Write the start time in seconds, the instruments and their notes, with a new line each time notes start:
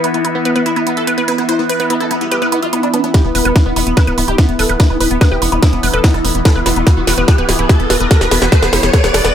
Already playing: synth drone E3 B3, analog synth pad B3 E4 E5 B5
0.04 supersaw synth B3, synth arpeggio sound E4, closed hi-hat
0.14 supersaw synth B3, synth arpeggio sound E4, closed hi-hat
0.25 synth arpeggio sound E4, closed hi-hat
0.35 supersaw synth B3
0.45 supersaw synth B3, synth arpeggio sound B4, closed hi-hat
0.56 supersaw synth B3, synth arpeggio sound B4, closed hi-hat
0.66 synth arpeggio sound E4, supersaw synth E4, closed hi-hat
0.76 supersaw synth B3, synth arpeggio sound E4, closed hi-hat
0.87 supersaw synth B3, synth arpeggio sound E4, closed hi-hat
0.97 supersaw synth A4, closed hi-hat
1.07 supersaw synth B3, synth arpeggio sound B4, closed hi-hat
1.18 supersaw synth B3, synth arpeggio sound B4, closed hi-hat
1.28 wobble bass B3, synth arpeggio sound E4, supersaw synth B4, closed hi-hat
1.38 supersaw synth B3, wobble bass B3, synth arpeggio sound E4, closed hi-hat
1.49 synth arpeggio sound E4, supersaw synth C5, closed hi-hat
1.59 supersaw synth B3
1.69 synth arpeggio sound B4, supersaw synth B4, closed hi-hat
1.80 supersaw synth B3, synth arpeggio sound B4, closed hi-hat
1.90 supersaw synth B3, synth arpeggio sound E4, closed hi-hat
2.00 wobble bass B3, synth arpeggio sound E4, supersaw synth A4, closed hi-hat
2.11 supersaw synth B3, wobble bass B3, synth arpeggio sound E4, closed hi-hat
2.21 wobble bass G3, supersaw synth B3, closed hi-hat
2.31 wobble bass G3, supersaw synth G4, synth arpeggio sound B4, closed hi-hat
2.42 supersaw synth B3, synth arpeggio sound B4, closed hi-hat
2.52 supersaw synth B3, synth arpeggio sound E4, closed hi-hat
2.63 wobble bass E3, supersaw synth F4, synth arpeggio sound E5, closed hi-hat
2.73 supersaw synth B3, synth arpeggio sound E4, closed hi-hat
2.83 supersaw synth D4, synth arpeggio sound E4, closed hi-hat
2.94 supersaw synth B3, synth arpeggio sound D4, closed hi-hat
3.04 supersaw synth B3, synth arpeggio sound D4, closed hi-hat
3.14 synth drone E3 B3, synth arpeggio sound E4, supersaw synth G4, kick, snare, closed hi-hat, riser
3.25 analog synth bass E1, supersaw synth B3
3.35 analog synth bass E1, supersaw synth B3, synth arpeggio sound B4, open hi-hat
3.45 analog synth bass E1, supersaw synth B3, synth arpeggio sound B4, closed hi-hat
3.56 synth arpeggio sound E4, kick, snare, closed hi-hat
3.66 analog synth bass E1, supersaw synth B3, synth arpeggio sound E4
3.76 analog synth bass E1, supersaw synth B3, synth arpeggio sound E4, open hi-hat
3.87 analog synth bass E1, supersaw synth B3, closed hi-hat
3.97 supersaw synth E4, synth arpeggio sound B4, kick, snare, closed hi-hat
4.07 analog synth bass D1, supersaw synth B3, synth arpeggio sound B4, closed hi-hat
4.18 analog synth bass D1, supersaw synth B3, synth arpeggio sound E4, open hi-hat
4.28 analog synth bass D1, synth arpeggio sound E4, supersaw synth G4, closed hi-hat
4.38 supersaw synth B3, synth arpeggio sound E4, kick, snare, closed hi-hat
4.49 analog synth bass E1, supersaw synth B3, closed hi-hat
4.59 analog synth bass E1, supersaw synth A4, synth arpeggio sound B4, open hi-hat
4.69 analog synth bass E1, supersaw synth B3, synth arpeggio sound B4, closed hi-hat
4.80 synth arpeggio sound E4, supersaw synth B4, kick, snare, closed hi-hat
4.90 analog synth bass E1, supersaw synth B3, synth arpeggio sound E4
5.00 analog synth bass E1, synth arpeggio sound E4, supersaw synth B4, open hi-hat
5.11 analog synth bass E1, supersaw synth B3, closed hi-hat
5.21 supersaw synth B3, synth arpeggio sound B4, kick, snare, closed hi-hat
5.31 analog synth bass E1, supersaw synth G4, synth arpeggio sound B4
5.42 analog synth bass F1, supersaw synth B3, synth arpeggio sound E4, open hi-hat
5.52 analog synth bass E1, supersaw synth B3, synth arpeggio sound E4, closed hi-hat
5.62 supersaw synth E4, synth arpeggio sound E4, kick, snare, closed hi-hat
5.73 analog synth bass E1, supersaw synth B3, closed hi-hat
5.83 analog synth bass E1, supersaw synth B3, synth arpeggio sound B4, open hi-hat
5.94 analog synth bass E1, supersaw synth A4, synth arpeggio sound B4, closed hi-hat
6.04 supersaw synth B3, synth arpeggio sound E4, kick, snare, closed hi-hat
6.14 analog synth bass E1, synth arpeggio sound E4, supersaw synth A4, closed hi-hat
6.25 analog synth bass E1, supersaw synth B3, synth arpeggio sound E4, open hi-hat
6.35 analog synth bass E1, supersaw synth B3, closed hi-hat
6.45 supersaw synth A4, synth arpeggio sound B4, kick, snare, closed hi-hat
6.56 analog synth bass E1, supersaw synth B3, synth arpeggio sound B4
6.66 analog synth bass E1, supersaw synth B3, synth arpeggio sound E4, snare, open hi-hat
6.76 analog synth bass E1, supersaw synth B3, synth arpeggio sound E4, closed hi-hat
6.87 synth arpeggio sound E4, kick, snare, closed hi-hat
6.97 analog synth bass E1, supersaw synth B3
7.07 analog synth bass E1, supersaw synth B3, synth arpeggio sound B4, snare, open hi-hat
7.18 analog synth bass E1, supersaw synth B3, synth arpeggio sound B4, closed hi-hat
7.28 supersaw synth A4, synth arpeggio sound B4, kick, snare, closed hi-hat
7.38 analog synth bass D1, supersaw synth B3, synth arpeggio sound B4, closed hi-hat
7.49 analog synth bass D1, supersaw synth B3, synth arpeggio sound E4, snare, open hi-hat
7.59 analog synth bass D1, supersaw synth B3, synth arpeggio sound E4, closed hi-hat
7.69 synth arpeggio sound E4, kick, snare, closed hi-hat
7.80 analog synth bass E1, supersaw synth B3, closed hi-hat
7.90 analog synth bass E1, supersaw synth B3, synth arpeggio sound B4, snare, open hi-hat
8.00 analog synth bass E1, supersaw synth B3, synth arpeggio sound B4, closed hi-hat
8.11 supersaw synth A4, synth arpeggio sound B4, kick, snare, closed hi-hat
8.21 analog synth bass E1, supersaw synth B3, synth arpeggio sound B4, snare
8.31 analog synth bass E1, supersaw synth B3, synth arpeggio sound E4, snare, open hi-hat
8.42 analog synth bass E1, supersaw synth B3, synth arpeggio sound E4, snare, closed hi-hat
8.52 supersaw synth A4, synth arpeggio sound B4, kick, snare, closed hi-hat
8.62 analog synth bass E1, supersaw synth B3, synth arpeggio sound B4, snare
8.73 analog synth bass F1, supersaw synth B3, synth arpeggio sound E4, snare, open hi-hat
8.83 analog synth bass E1, supersaw synth B3, synth arpeggio sound E4, snare, closed hi-hat
8.94 supersaw synth A4, synth arpeggio sound B4, kick, snare, closed hi-hat
9.04 analog synth bass E1, supersaw synth B3, synth arpeggio sound B4, snare, closed hi-hat
9.14 analog synth bass E1, supersaw synth A4, synth arpeggio sound B4, snare, open hi-hat
9.25 analog synth bass E1, supersaw synth B3, synth arpeggio sound B4, snare, closed hi-hat